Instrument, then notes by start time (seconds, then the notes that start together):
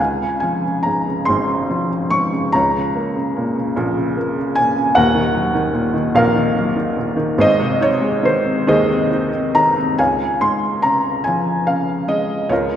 felt piano
Already playing: G#5
0.00 C#2 F5
0.21 C#3
0.40 F3 G#5
0.64 C#3
0.83 G#2 A#5
1.08 C#3
1.25 G#1 G#2 C6
1.48 C#3
1.69 F3
1.90 C#3
2.10 G#2 C#6
2.32 C#3
2.52 C#2 C#5 A#5
2.75 C#3
2.95 A#3
3.15 C#3
3.37 A#2
3.56 C#3
3.76 A#1 A#2
3.97 C#3
4.17 A#3
4.38 C#3
4.55 A#2 G#5
4.76 C#3
4.95 D#1 D#2 A#4 F#5
5.15 D#3
5.34 F#3
5.55 D#3
5.73 A#2
5.94 D#3
6.14 A#1 A#2 A#4 F5
6.35 D#3
6.55 F#3
6.76 D#3
6.97 A#2
7.17 D#3
7.38 G#1 G#2 C5 D#5
7.59 C3
7.80 D#4 C#5
8.02 G#3
8.23 D#3 C5
8.44 C4
8.67 D#2 D#3 G#4 C5 D#5
8.89 C4
9.11 D#4
9.32 C4
9.54 D#3 A#5
9.76 C4
9.98 C#2 C#5 F5 G#5
10.41 G#2 C6
10.82 C#3 A#5
11.24 F3 G#5
11.67 C#3 F5
12.08 G#3 D#5
12.49 C#2 F4 A#4 C#5